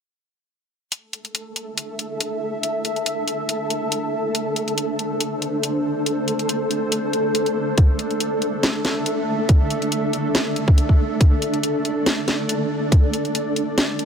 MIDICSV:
0, 0, Header, 1, 4, 480
1, 0, Start_track
1, 0, Tempo, 428571
1, 1030, Time_signature, 4, 2, 24, 8
1, 15736, End_track
2, 0, Start_track
2, 0, Title_t, "Ambient pad"
2, 0, Program_c, 0, 92
2, 1029, Note_on_c, 0, 76, 89
2, 1030, Note_on_c, 0, 62, 77
2, 1030, Note_on_c, 0, 69, 76
2, 4857, Note_off_c, 0, 76, 0
2, 4870, Note_on_c, 0, 72, 89
2, 8697, Note_off_c, 0, 72, 0
2, 8710, Note_on_c, 0, 76, 88
2, 12538, Note_off_c, 0, 76, 0
2, 12550, Note_on_c, 0, 74, 90
2, 15736, Note_off_c, 0, 62, 0
2, 15736, Note_off_c, 0, 69, 0
2, 15736, Note_off_c, 0, 74, 0
2, 15736, End_track
3, 0, Start_track
3, 0, Title_t, "Synth texture"
3, 0, Program_c, 1, 99
3, 1030, Note_on_c, 1, 57, 81
3, 1031, Note_on_c, 1, 69, 82
3, 8708, Note_on_c, 1, 62, 85
3, 8737, Note_off_c, 1, 69, 0
3, 15736, Note_off_c, 1, 57, 0
3, 15736, Note_off_c, 1, 62, 0
3, 15736, End_track
4, 0, Start_track
4, 0, Title_t, "Drums"
4, 1028, Note_on_c, 9, 42, 71
4, 1140, Note_off_c, 9, 42, 0
4, 1268, Note_on_c, 9, 42, 51
4, 1380, Note_off_c, 9, 42, 0
4, 1397, Note_on_c, 9, 42, 35
4, 1508, Note_off_c, 9, 42, 0
4, 1508, Note_on_c, 9, 42, 73
4, 1620, Note_off_c, 9, 42, 0
4, 1748, Note_on_c, 9, 42, 50
4, 1860, Note_off_c, 9, 42, 0
4, 1988, Note_on_c, 9, 42, 75
4, 2100, Note_off_c, 9, 42, 0
4, 2229, Note_on_c, 9, 42, 49
4, 2341, Note_off_c, 9, 42, 0
4, 2469, Note_on_c, 9, 42, 77
4, 2581, Note_off_c, 9, 42, 0
4, 2949, Note_on_c, 9, 42, 73
4, 3061, Note_off_c, 9, 42, 0
4, 3189, Note_on_c, 9, 42, 52
4, 3301, Note_off_c, 9, 42, 0
4, 3319, Note_on_c, 9, 42, 36
4, 3429, Note_off_c, 9, 42, 0
4, 3429, Note_on_c, 9, 42, 75
4, 3541, Note_off_c, 9, 42, 0
4, 3668, Note_on_c, 9, 42, 50
4, 3780, Note_off_c, 9, 42, 0
4, 3908, Note_on_c, 9, 42, 75
4, 4020, Note_off_c, 9, 42, 0
4, 4148, Note_on_c, 9, 42, 51
4, 4260, Note_off_c, 9, 42, 0
4, 4388, Note_on_c, 9, 42, 76
4, 4500, Note_off_c, 9, 42, 0
4, 4869, Note_on_c, 9, 42, 74
4, 4981, Note_off_c, 9, 42, 0
4, 5110, Note_on_c, 9, 42, 49
4, 5222, Note_off_c, 9, 42, 0
4, 5238, Note_on_c, 9, 42, 34
4, 5350, Note_off_c, 9, 42, 0
4, 5350, Note_on_c, 9, 42, 74
4, 5462, Note_off_c, 9, 42, 0
4, 5590, Note_on_c, 9, 42, 50
4, 5702, Note_off_c, 9, 42, 0
4, 5829, Note_on_c, 9, 42, 74
4, 5941, Note_off_c, 9, 42, 0
4, 6070, Note_on_c, 9, 42, 51
4, 6182, Note_off_c, 9, 42, 0
4, 6310, Note_on_c, 9, 42, 74
4, 6422, Note_off_c, 9, 42, 0
4, 6791, Note_on_c, 9, 42, 69
4, 6903, Note_off_c, 9, 42, 0
4, 7031, Note_on_c, 9, 42, 48
4, 7143, Note_off_c, 9, 42, 0
4, 7160, Note_on_c, 9, 42, 35
4, 7271, Note_off_c, 9, 42, 0
4, 7271, Note_on_c, 9, 42, 71
4, 7383, Note_off_c, 9, 42, 0
4, 7511, Note_on_c, 9, 42, 49
4, 7623, Note_off_c, 9, 42, 0
4, 7750, Note_on_c, 9, 42, 73
4, 7862, Note_off_c, 9, 42, 0
4, 7989, Note_on_c, 9, 42, 48
4, 8101, Note_off_c, 9, 42, 0
4, 8229, Note_on_c, 9, 42, 72
4, 8341, Note_off_c, 9, 42, 0
4, 8358, Note_on_c, 9, 42, 35
4, 8470, Note_off_c, 9, 42, 0
4, 8709, Note_on_c, 9, 36, 112
4, 8709, Note_on_c, 9, 42, 69
4, 8821, Note_off_c, 9, 36, 0
4, 8821, Note_off_c, 9, 42, 0
4, 8949, Note_on_c, 9, 42, 48
4, 9061, Note_off_c, 9, 42, 0
4, 9078, Note_on_c, 9, 42, 34
4, 9188, Note_off_c, 9, 42, 0
4, 9188, Note_on_c, 9, 42, 71
4, 9300, Note_off_c, 9, 42, 0
4, 9428, Note_on_c, 9, 42, 47
4, 9540, Note_off_c, 9, 42, 0
4, 9669, Note_on_c, 9, 38, 106
4, 9669, Note_on_c, 9, 42, 70
4, 9781, Note_off_c, 9, 38, 0
4, 9781, Note_off_c, 9, 42, 0
4, 9908, Note_on_c, 9, 38, 57
4, 9908, Note_on_c, 9, 42, 46
4, 10020, Note_off_c, 9, 38, 0
4, 10020, Note_off_c, 9, 42, 0
4, 10148, Note_on_c, 9, 42, 70
4, 10260, Note_off_c, 9, 42, 0
4, 10628, Note_on_c, 9, 42, 68
4, 10629, Note_on_c, 9, 36, 109
4, 10740, Note_off_c, 9, 42, 0
4, 10741, Note_off_c, 9, 36, 0
4, 10869, Note_on_c, 9, 42, 47
4, 10981, Note_off_c, 9, 42, 0
4, 10998, Note_on_c, 9, 42, 33
4, 11109, Note_off_c, 9, 42, 0
4, 11109, Note_on_c, 9, 42, 70
4, 11221, Note_off_c, 9, 42, 0
4, 11349, Note_on_c, 9, 42, 48
4, 11461, Note_off_c, 9, 42, 0
4, 11590, Note_on_c, 9, 38, 104
4, 11590, Note_on_c, 9, 42, 69
4, 11702, Note_off_c, 9, 38, 0
4, 11702, Note_off_c, 9, 42, 0
4, 11830, Note_on_c, 9, 42, 48
4, 11942, Note_off_c, 9, 42, 0
4, 11958, Note_on_c, 9, 36, 97
4, 12070, Note_off_c, 9, 36, 0
4, 12071, Note_on_c, 9, 42, 70
4, 12183, Note_off_c, 9, 42, 0
4, 12199, Note_on_c, 9, 36, 54
4, 12311, Note_off_c, 9, 36, 0
4, 12550, Note_on_c, 9, 36, 107
4, 12552, Note_on_c, 9, 42, 73
4, 12662, Note_off_c, 9, 36, 0
4, 12664, Note_off_c, 9, 42, 0
4, 12791, Note_on_c, 9, 42, 50
4, 12903, Note_off_c, 9, 42, 0
4, 12920, Note_on_c, 9, 42, 35
4, 13030, Note_off_c, 9, 42, 0
4, 13030, Note_on_c, 9, 42, 72
4, 13142, Note_off_c, 9, 42, 0
4, 13272, Note_on_c, 9, 42, 49
4, 13384, Note_off_c, 9, 42, 0
4, 13511, Note_on_c, 9, 38, 103
4, 13511, Note_on_c, 9, 42, 70
4, 13623, Note_off_c, 9, 38, 0
4, 13623, Note_off_c, 9, 42, 0
4, 13751, Note_on_c, 9, 38, 55
4, 13751, Note_on_c, 9, 42, 47
4, 13863, Note_off_c, 9, 38, 0
4, 13863, Note_off_c, 9, 42, 0
4, 13991, Note_on_c, 9, 42, 71
4, 14103, Note_off_c, 9, 42, 0
4, 14470, Note_on_c, 9, 36, 111
4, 14471, Note_on_c, 9, 42, 75
4, 14582, Note_off_c, 9, 36, 0
4, 14583, Note_off_c, 9, 42, 0
4, 14711, Note_on_c, 9, 42, 52
4, 14823, Note_off_c, 9, 42, 0
4, 14840, Note_on_c, 9, 42, 35
4, 14951, Note_off_c, 9, 42, 0
4, 14951, Note_on_c, 9, 42, 75
4, 15063, Note_off_c, 9, 42, 0
4, 15191, Note_on_c, 9, 42, 52
4, 15303, Note_off_c, 9, 42, 0
4, 15430, Note_on_c, 9, 38, 110
4, 15430, Note_on_c, 9, 42, 76
4, 15542, Note_off_c, 9, 38, 0
4, 15542, Note_off_c, 9, 42, 0
4, 15670, Note_on_c, 9, 42, 51
4, 15736, Note_off_c, 9, 42, 0
4, 15736, End_track
0, 0, End_of_file